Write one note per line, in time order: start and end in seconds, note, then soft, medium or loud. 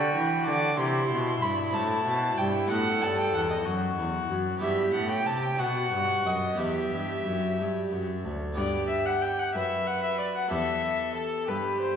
0.00 0.12 D3 soft
0.00 0.14 D3 medium
0.00 0.72 B3 soft
0.00 0.73 D4 soft
0.00 0.74 F#4 medium
0.00 0.74 G4 soft
0.00 0.46 G5 medium
0.15 0.48 E3 medium
0.15 0.44 E3 soft
0.46 0.78 D3 medium
0.46 0.75 D3 soft
0.46 0.77 D6 medium
0.76 1.09 C3 medium
0.76 1.07 C3 soft
0.76 1.70 E4 soft
0.76 2.70 E4 medium
0.76 1.70 G4 soft
0.76 1.44 C6 medium
1.10 1.41 B2 medium
1.10 1.39 B2 soft
1.42 1.75 G2 medium
1.42 1.71 G2 soft
1.42 1.75 B5 medium
1.70 2.05 A2 medium
1.70 2.03 A2 soft
1.70 2.65 C4 soft
1.70 2.65 E4 soft
1.70 2.66 F#4 soft
1.70 2.39 A5 medium
2.05 2.37 B2 medium
2.05 2.35 B2 soft
2.37 2.69 G2 medium
2.37 2.67 G2 soft
2.37 2.69 G5 medium
2.66 3.01 A2 medium
2.66 4.55 B3 soft
2.66 4.56 D#4 soft
2.66 4.57 F#4 soft
2.66 3.67 A4 medium
2.66 3.03 F#5 medium
2.70 2.99 A2 soft
3.02 3.33 G2 medium
3.02 3.30 G2 soft
3.02 3.18 A5 medium
3.19 3.34 G5 medium
3.34 3.65 E2 medium
3.34 3.63 E2 soft
3.34 3.41 F#5 medium
3.51 3.66 D#5 medium
3.65 3.97 F#2 soft
3.65 3.95 F#2 soft
3.65 4.60 F#4 medium
3.97 4.28 E2 soft
3.97 4.27 E2 soft
4.29 4.60 F#2 medium
4.29 4.58 F#2 soft
4.57 4.92 G2 medium
4.57 5.53 B3 soft
4.57 5.54 E4 soft
4.57 5.55 G4 soft
4.57 5.60 G4 medium
4.62 4.90 G2 soft
4.62 4.91 E5 medium
4.93 5.25 A2 soft
4.93 5.23 A2 soft
4.93 5.09 F#5 medium
5.11 5.28 G5 medium
5.25 5.57 C3 soft
5.25 5.55 C3 soft
5.25 5.42 A5 medium
5.43 5.61 G5 medium
5.54 5.91 B2 soft
5.54 6.52 B3 soft
5.54 6.54 D#4 soft
5.54 6.55 A4 soft
5.59 5.88 B2 soft
5.59 6.57 F#4 medium
5.59 6.28 F#5 medium
5.91 6.24 G2 soft
5.91 6.21 G2 soft
6.25 6.55 F#2 soft
6.25 6.57 F#2 soft
6.25 6.60 D#5 medium
6.53 7.20 B3 soft
6.53 8.52 E4 soft
6.53 8.53 G4 soft
6.58 6.88 E2 soft
6.58 6.91 E2 soft
6.58 8.05 G4 soft
6.58 8.25 E5 medium
6.91 7.24 G2 soft
6.91 7.22 G2 soft
7.25 7.60 F#2 soft
7.25 7.55 F#2 soft
7.58 7.91 G2 soft
7.58 7.88 G2 soft
7.91 8.26 F#2 soft
7.91 8.21 F#2 soft
8.24 8.57 D2 soft
8.24 8.55 D2 soft
8.53 9.50 B3 soft
8.53 9.50 D4 soft
8.53 10.47 G4 soft
8.57 9.51 G2 medium
8.57 9.51 G2 soft
8.57 9.57 G4 medium
8.57 8.88 D5 medium
8.89 9.08 E5 medium
9.06 9.23 F#5 medium
9.22 9.41 G5 medium
9.39 9.54 F#5 medium
9.55 10.48 F#2 soft
9.55 10.51 B4 medium
9.55 9.88 E5 medium
9.87 10.03 F#5 medium
10.04 10.18 E5 medium
10.19 10.25 D5 medium
10.35 10.51 F#5 medium
10.47 11.96 B3 soft
10.47 11.96 E4 soft
10.47 11.96 G4 soft
10.51 11.44 E2 soft
10.51 11.44 E2 medium
10.51 11.47 A4 medium
10.51 11.15 E5 medium
11.15 11.50 A4 medium
11.48 11.96 G2 medium
11.48 11.96 G2 soft
11.48 11.96 G4 medium
11.48 11.80 B4 medium
11.80 11.96 C5 medium